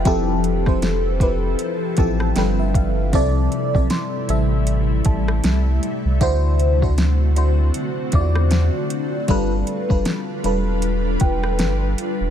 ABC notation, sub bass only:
X:1
M:4/4
L:1/16
Q:"Swing 16ths" 1/4=78
K:C
V:1 name="Sub bass" clef=bass
F,,,8 z2 A,,,2 G,,,4 | C,,2 z B,,, z2 A,,,4 A,,,2 C,,2 z C,, | D,,8 z2 E,,3 z3 | G,,,2 z F,,, z2 E,,,4 E,,,2 G,,,2 z E,,, |]